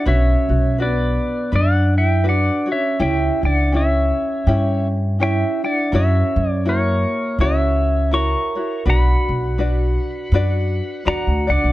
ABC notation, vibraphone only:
X:1
M:4/4
L:1/8
Q:"Swing" 1/4=82
K:Bm
V:1 name="Vibraphone"
C2 B,2 D E D C | E D C3 z E D | C2 ^A,2 C2 ^A2 | F6 F D |]